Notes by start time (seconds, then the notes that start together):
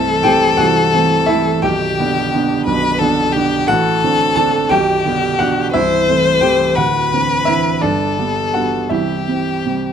Already playing: C1 C2 E3 A3 C4 E4 A4 E5
0.23 E3 A3 C4 G4 G5
0.57 C1 C2 F#4 F#5
0.93 E3 A3 C4
1.26 E3 A3 C4 E4 E5
1.62 B0 B1 G4 G5
2.00 D3 B3 D4
2.34 D3 B3 D4
2.66 B0 B1 B4
2.99 D3 B3 D4 A4
3.32 D3 G4
3.36 B3 D4
3.67 A1 A2 F#4 A4 F#5
4.04 D3 C4 D4
4.36 D3 C4 D4 A4 A5
4.69 B0 B1 G4 G5
5.05 D3 B3 D4
5.39 D3 B3 D4 F#4 F#5
5.72 C1 C2 E4 C5 E5
6.09 E3 A3 C4
6.41 E3 A3 C4 G4 G5
6.75 D1 D2 F#4 B4 F#5
7.13 D3 E3 C4
7.45 D3 E3 C4 E4 E5
7.81 G1 G2 D4 A4 D5
8.18 D3 G3 B3
8.54 D3 G3 B3 F#4 F#5
8.89 C1 C2 E4 G4 E5
9.28 C3 G3 C4
9.66 C3 G3 C4